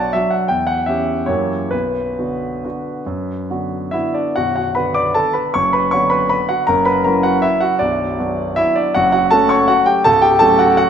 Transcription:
Already playing: B1 F#3 D4 F#4 D5 F#5 A5
0.13 F#3 D4 F#4 E5
0.30 F#5
0.48 E2 G5
0.67 F#5
0.86 E3 C#4 G4 E5
1.26 F#2 E3 A#3 G4 C#5
1.71 B1 B4
2.19 D3 B3 F#4
2.64 D3 B3 F#4
3.06 F#2
3.50 D3 B3 F#4
3.91 D3 B3 E4 F#4 E5
4.14 D4 D5
4.36 B0 B1 F#4 F#5
4.56 F#4 F#5
4.75 D3 B3 F#4 B4 B5
4.94 D5 D6
5.14 A4 A5
5.33 B4 B5
5.54 F#1 F#2 C#5 C#6
5.73 B4 B5
5.91 D3 B3 F#4 C#5 C#6
6.10 B4 B5
6.29 B4 B5
6.49 F#4 F#5
6.67 F#1 F#2 A#4 A#5
6.85 B4 B5
7.04 F#3 C#4 E4 A#4 A#5
7.23 F#4 F#5
7.42 E4 E5
7.61 F#4 F#5
7.79 B0 B1 D4 D5
8.19 F#3 B3 D4
8.56 E4 E5
8.75 D4 D5
8.94 F#1 F#2 F#4 F#5
9.12 F#4 F#5
9.31 F#3 A3 C#4 A4 A5
9.49 C#5 C#6
9.68 F#4 F#5
9.86 G4 G5
10.04 C#1 C#2 A4 A5
10.22 G4 G5
10.39 F#3 A3 C#4 A4 A5
10.59 F#4 F#5
10.77 F#4 F#5

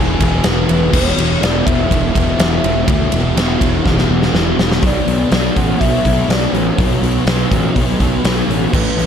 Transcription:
Already playing: E1 E2 B2 E3 G#5
0.19 E1 B2 E3, kick, ride
0.43 E1 E2 B2 E3 B4, snare, ride
0.68 E1 B2 E3, ride
0.92 E1 E2 B2 E3 C#5, kick, crash
1.17 E1 B2 E3, ride
1.40 E1 E2 B2 E3 D5, ride
1.44 snare
1.66 E1 B2 E3 E5, kick, ride
1.90 E1 E2 B2 E3, kick, ride
2.12 E1 B2 E3, kick, ride
2.37 E1 E2 B2 E3, snare, ride
2.62 E1 B2 E3, ride
2.86 D2 E2 B2 E3, kick, ride
3.11 E1 B2 E3, ride
3.35 E1 E2 B2 E3, snare, ride
3.61 E1 B2 E3, kick, ride
3.84 E1 E2 B2 E3, kick, snare
3.98 snare
4.09 E1 B2 E3
4.22 snare
4.32 E1 E2 B2 E3, snare
4.58 E1 B2 E3, snare
4.72 snare
4.81 B1 B2 F#3 B3, kick, open hi-hat
4.86 D5
5.07 B1, open hi-hat
5.30 B1 B2 F#3 B3, snare, open hi-hat
5.56 A1 F#5, kick, open hi-hat
5.79 B1 B2 F#3 B3 E5, kick, open hi-hat
6.04 B1 F#3 B3, kick, open hi-hat
6.29 B1 B2 F#3 B3 D5, snare, open hi-hat
6.52 A1 C#5, open hi-hat
6.77 B1 B2 F#3 B3, kick, open hi-hat
7.01 B1, open hi-hat
7.26 B1 B2 F#3 B3, snare, open hi-hat
7.51 A1, kick, open hi-hat
7.74 B1 B2 F#3 B3, kick, open hi-hat
7.99 B1 F#3 B3, kick, open hi-hat
8.24 B1 B2 F#3 B3, snare, open hi-hat
8.49 A1, open hi-hat
8.72 A1 A2 E3 A3 B4, kick, crash
8.97 A1, open hi-hat

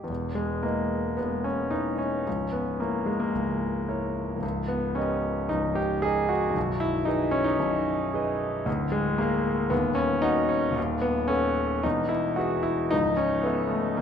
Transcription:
Already playing: G#4
0.04 E2
0.09 E1
0.35 G#3
0.63 A#3 E4 B4 D#5
1.17 E1 E2 B3
1.44 C#4
1.71 D#4 E4 B4 D#5
1.98 C#4
2.27 C#1 C#2
2.52 B3
2.80 A#3 E4 A#4 C#5
3.06 G#3
3.20 A#3
3.34 C#1 C#2
3.88 E4 A#4 C#5
4.36 C#1
4.42 C#2
4.68 B3
4.95 C#4 G4 A#4 D#5
5.49 C#1 C#2 D#4
5.75 G4
6.02 G4 G#4 A#4 D#5
6.29 F#4
6.50 B0
6.57 B1
6.80 E4
7.05 D#4 G#4 B4 D#5
7.31 C#4
7.44 D#4
7.59 B0 B1
8.14 G#4 B4 D#5
8.66 D1 D2
8.92 G#3
9.18 A#3 G#4 A#4 F5
9.70 D#1 D#2 B3
9.95 C#4
10.22 D#4 F#4 A#4 F#5
10.49 C#4
10.71 D#1
10.76 D#2
11.01 B3
11.28 C#4 A4 B4 F#5
11.83 E1 E2 D#4
12.09 E4
12.36 F#4 G#4 B4 E5
12.63 E4
12.91 C#1 C#2 D#4
13.17 C#4
13.43 B3 A4 C#5 E5
13.69 A3
13.97 A#3

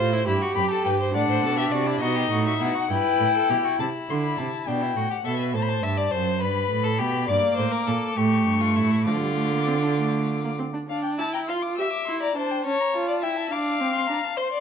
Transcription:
Already playing: A2 F4 C5
0.12 E4
0.27 G2 E4 G4
0.42 F#4
0.56 F#2 G4 B5
0.71 A4 A5
0.85 G2 B4 G5
1.00 C5
1.14 A2 D4 D5 F#5
1.30 C5
1.43 B2 A4
1.57 G4 E5
1.71 C3 F#4 D5
1.86 E4
2.01 B2 D#4 F#4 D#5
2.16 G4
2.31 A2 F#4
2.46 F#4 E5
2.60 B2 E4 F#5
2.74 F#4
2.90 G2 E4 B4 G5
3.20 A2
3.35 A4
3.50 B2 G4
3.64 F#4
3.79 C3 E4 A5
4.09 D3 C6
4.24 B5
4.38 C3 A5
4.67 B2 D4 G5
4.82 E4
4.96 A2 F#4
5.10 G4 F#5
5.25 B2 A4 E5
5.39 B4
5.54 A2 C5 A5
5.62 B5
5.69 A5
5.83 G2 E5
5.98 D5
6.11 F#2 C5
6.41 G2 B4 B5
6.71 A2
6.84 A4
6.99 B2 G4
7.28 G2 A#3 D5 D6
7.57 A2 C5
7.72 A#4
7.87 A#2 A4
8.16 A2 A3 G4 C#6
8.46 G2
8.61 F4
8.76 A2 E4
9.06 D3 F3 F4 D6
9.22 G3
9.37 A3
9.52 A#3
9.67 C4
9.82 D4
9.97 A3
10.44 A#3
10.59 C4
10.73 D4
10.88 D4 F5
11.03 G5
11.18 E4 A5
11.33 G5 A#5
11.48 F4 F5 C6
11.62 D6
11.78 G4 E5 E6
11.93 D6
12.06 E4 C6
12.22 D5 A#5
12.35 D4 C5 A5
12.51 G5
12.65 C#4 C#5 A5
12.80 A#5
12.94 F4 A5
13.08 D5 A5
13.22 E4 E5 G5
13.37 A5
13.51 D4 F5 D6
13.80 C4
13.95 C6
14.09 D4 A#5
14.24 A5
14.37 C5 C6
14.52 D5

